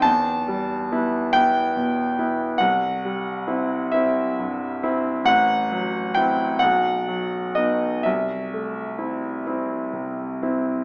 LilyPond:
\new Staff \with { instrumentName = "Grand piano" } { \time 12/8 \key e \minor \tempo 4. = 44 << { a''4. g''4. fis''4. e''8 r4 | fis''4 g''8 fis''4 dis''8 e''2. | } \\ { e,8 g8 <b e'>8 <b e'>8 b,8 <b e'>8 c,8 g8 <c' e'>8 <c' e'>8 g,8 <c' e'>8 | a,,8 fis8 <c' e'>8 b,,8 fis8 <b dis'>8 c,8 a8 <c' e'>8 <c' e'>8 c8 <c' e'>8 | } >> }